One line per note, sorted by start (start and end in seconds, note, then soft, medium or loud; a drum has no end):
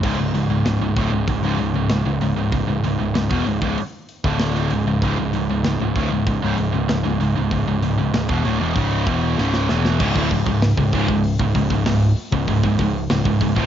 0.03 0.17 C#1 medium
0.03 0.19 C#2 medium
0.03 0.19 G#2 loud
0.03 kick loud
0.03 open hi-hat medium
0.03 crash medium
0.18 0.33 C#1 medium
0.18 0.33 C#2 medium
0.18 0.33 G#2 medium
0.33 0.48 C#1 medium
0.33 0.49 C#2 medium
0.33 0.49 G#2 medium
0.33 open hi-hat medium
0.49 0.64 C#1 medium
0.49 0.65 C#2 medium
0.49 0.65 G#2 medium
0.65 0.79 C#1 medium
0.65 0.80 C#2 medium
0.65 0.80 G#2 medium
0.65 snare loud
0.65 open hi-hat medium
0.80 0.95 C#1 medium
0.80 0.96 C#2 medium
0.80 0.97 G#2 medium
0.96 1.11 D1 medium
0.96 1.12 D2 medium
0.96 1.12 A2 medium
0.96 kick loud
0.96 open hi-hat medium
1.12 1.27 C#1 medium
1.12 1.28 C#2 medium
1.12 1.28 G#2 medium
1.28 1.42 C#1 medium
1.28 1.43 C#2 medium
1.28 1.43 G#2 medium
1.28 kick medium
1.28 open hi-hat medium
1.43 1.58 C#1 loud
1.43 1.59 C#2 medium
1.43 1.59 G#2 medium
1.58 1.74 C#1 medium
1.58 1.74 C#2 medium
1.58 1.75 G#2 medium
1.58 open hi-hat medium
1.74 1.89 C#1 medium
1.74 1.90 C#2 medium
1.74 1.90 G#2 medium
1.89 2.04 C#1 medium
1.89 2.04 C#2 medium
1.89 2.05 G#2 medium
1.89 snare loud
1.89 open hi-hat medium
2.05 2.20 C#1 medium
2.05 2.20 C#2 medium
2.05 2.21 G#2 medium
2.21 2.36 C#1 medium
2.21 2.35 C#2 medium
2.21 2.36 G#2 medium
2.21 open hi-hat medium
2.36 2.51 C#1 medium
2.36 2.51 C#2 medium
2.36 2.51 G#2 medium
2.52 2.67 C#1 medium
2.52 2.66 C#2 medium
2.52 2.67 G#2 medium
2.52 kick medium
2.52 open hi-hat medium
2.67 2.82 C#1 medium
2.67 2.83 C#2 medium
2.67 2.83 G#2 medium
2.83 2.98 C#1 medium
2.83 2.98 C#2 medium
2.83 2.98 G#2 medium
2.83 open hi-hat medium
2.99 3.14 C#1 medium
2.99 3.13 C#2 medium
2.99 3.14 G#2 medium
3.14 3.30 C#1 medium
3.14 3.29 C#2 medium
3.14 3.30 G#2 medium
3.14 snare loud
3.14 open hi-hat medium
3.29 3.45 E1 medium
3.29 3.45 E2 medium
3.29 3.45 B2 loud
3.29 kick loud
3.46 3.61 C#1 medium
3.46 3.61 C#2 medium
3.46 3.61 G#2 medium
3.46 open hi-hat medium
3.62 3.76 C#1 loud
3.62 3.77 C#2 medium
3.62 3.77 G#2 medium
3.62 kick loud
3.78 open hi-hat medium
4.09 open hi-hat medium
4.24 4.68 D1 medium
4.24 4.70 D2 medium
4.24 4.71 A2 medium
4.24 4.71 D3 medium
4.24 kick loud
4.39 snare loud
4.39 open hi-hat medium
4.55 snare soft
4.70 4.85 C#1 medium
4.70 4.86 C#2 medium
4.70 4.86 G#2 medium
4.70 open hi-hat medium
4.85 5.01 C#1 medium
4.85 5.02 C#2 medium
4.85 5.03 G#2 medium
5.02 5.17 C#1 medium
5.02 5.17 C#2 medium
5.02 5.18 G#2 medium
5.02 kick loud
5.02 open hi-hat medium
5.18 5.32 C#1 medium
5.18 5.34 C#2 medium
5.18 5.34 G#2 medium
5.33 5.48 C#1 medium
5.33 5.49 C#2 medium
5.33 5.49 G#2 medium
5.33 open hi-hat medium
5.49 5.64 C#1 medium
5.49 5.65 C#2 medium
5.49 5.65 G#2 medium
5.64 5.79 C#1 medium
5.64 5.80 C#2 medium
5.64 5.81 G#2 medium
5.64 snare loud
5.64 open hi-hat medium
5.80 5.95 C#1 medium
5.80 5.95 C#2 medium
5.80 5.96 G#2 medium
5.96 6.10 D1 medium
5.96 6.10 D2 medium
5.96 6.11 A2 loud
5.96 kick loud
5.96 open hi-hat soft
6.11 6.26 C#1 medium
6.11 6.25 C#2 medium
6.11 6.26 G#2 medium
6.26 6.41 C#1 medium
6.26 6.41 C#2 medium
6.26 6.42 G#2 medium
6.26 kick medium
6.26 open hi-hat medium
6.42 6.57 C#1 loud
6.42 6.57 C#2 medium
6.42 6.57 G#2 medium
6.58 6.72 C#1 medium
6.58 6.71 C#2 medium
6.58 6.71 G#2 medium
6.58 open hi-hat medium
6.72 6.88 C#1 medium
6.72 6.87 C#2 medium
6.72 6.88 G#2 medium
6.88 7.04 C#1 medium
6.88 7.02 C#2 medium
6.88 7.03 G#2 medium
6.88 snare loud
6.88 open hi-hat medium
7.04 7.19 C#1 medium
7.04 7.19 C#2 medium
7.04 7.19 G#2 medium
7.20 7.35 C#1 medium
7.20 7.34 C#2 medium
7.20 7.35 G#2 medium
7.20 open hi-hat medium
7.36 7.51 C#1 medium
7.36 7.51 C#2 medium
7.36 7.51 G#2 medium
7.51 7.66 C#1 medium
7.51 7.66 C#2 medium
7.51 7.67 G#2 medium
7.51 kick medium
7.51 open hi-hat medium
7.66 7.81 C#1 medium
7.66 7.81 C#2 medium
7.66 7.82 G#2 medium
7.82 7.97 C#1 medium
7.82 7.97 C#2 medium
7.82 7.97 G#2 medium
7.82 open hi-hat medium
7.98 8.13 C#1 medium
7.98 8.12 C#2 medium
7.98 8.13 G#2 medium
8.13 8.28 C#1 medium
8.13 8.28 C#2 medium
8.13 8.29 G#2 medium
8.13 snare loud
8.13 open hi-hat medium
8.28 8.44 E1 loud
8.28 8.43 E2 medium
8.28 8.43 B2 medium
8.28 kick loud
8.43 8.59 D1 medium
8.43 8.59 D2 medium
8.43 8.59 A2 loud
8.43 open hi-hat medium
8.59 8.75 E1 medium
8.59 8.74 E2 medium
8.59 8.74 B2 medium
8.75 9.05 C#1 medium
8.75 9.05 C#2 medium
8.75 9.06 G#2 medium
8.75 9.06 C#3 loud
8.75 kick medium
8.75 open hi-hat medium
9.06 9.35 E1 medium
9.06 9.37 E2 medium
9.06 9.37 B2 medium
9.06 9.37 E3 loud
9.06 kick loud
9.06 open hi-hat medium
9.37 9.67 C#1 loud
9.37 9.68 C#2 medium
9.37 9.68 G#2 loud
9.37 9.68 C#3 loud
9.37 snare medium
9.54 snare medium
9.69 9.98 E1 medium
9.69 9.99 E2 medium
9.69 9.99 B2 medium
9.69 10.00 E3 loud
9.69 snare medium
9.85 snare medium
9.99 10.14 C#1 loud
9.99 10.14 C#2 loud
9.99 10.15 G#2 loud
9.99 kick loud
9.99 crash loud
10.15 10.30 D1 medium
10.15 10.29 D2 medium
10.15 10.30 A2 medium
10.15 kick medium
10.29 10.46 C#1 medium
10.29 10.45 C#2 medium
10.29 10.45 G#2 medium
10.29 kick medium
10.29 open hi-hat medium
10.46 10.75 C#1 medium
10.46 10.71 C#2 medium
10.46 10.71 G#2 medium
10.46 kick medium
10.62 snare loud
10.62 open hi-hat medium
10.77 10.92 C#1 medium
10.77 10.92 C#2 medium
10.77 10.93 G#2 medium
10.77 kick medium
10.92 11.07 C#1 loud
10.92 11.07 C#2 medium
10.92 11.07 G#2 medium
10.92 kick medium
10.92 open hi-hat medium
11.08 11.37 C#1 medium
11.08 11.33 C#2 medium
11.08 11.33 G#2 medium
11.08 kick medium
11.24 open hi-hat medium
11.39 11.54 C#1 medium
11.39 11.54 C#2 medium
11.39 11.54 G#2 medium
11.39 kick loud
11.55 11.69 C#1 medium
11.55 11.70 C#2 medium
11.55 11.70 G#2 medium
11.55 kick medium
11.55 open hi-hat medium
11.70 11.85 C#1 medium
11.70 11.85 C#2 medium
11.70 11.85 G#2 medium
11.70 kick medium
11.86 12.15 C#1 medium
11.86 12.11 C#2 medium
11.86 12.11 G#2 medium
11.86 snare loud
11.86 open hi-hat medium
12.17 open hi-hat medium
12.32 12.47 C#1 medium
12.32 12.47 C#2 medium
12.32 12.47 G#2 medium
12.32 kick medium
12.48 12.63 C#1 medium
12.48 12.62 C#2 medium
12.48 12.63 G#2 medium
12.48 kick medium
12.48 open hi-hat medium
12.63 12.78 C#1 medium
12.63 12.79 C#2 medium
12.63 12.79 G#2 medium
12.63 kick medium
12.79 13.08 C#1 medium
12.79 13.04 C#2 medium
12.79 13.05 G#2 medium
12.79 kick loud
12.79 open hi-hat medium
13.10 13.24 C#1 medium
13.10 13.25 C#2 medium
13.10 13.25 G#2 medium
13.10 snare loud
13.10 open hi-hat medium
13.25 13.40 C#1 medium
13.25 13.40 C#2 medium
13.25 13.40 G#2 medium
13.25 kick loud
13.41 13.55 C#1 medium
13.41 13.55 C#2 medium
13.41 13.56 G#2 medium
13.41 kick medium
13.41 open hi-hat medium
13.56 13.66 D1 loud
13.56 13.66 D2 medium
13.56 13.66 A2 loud
13.56 kick medium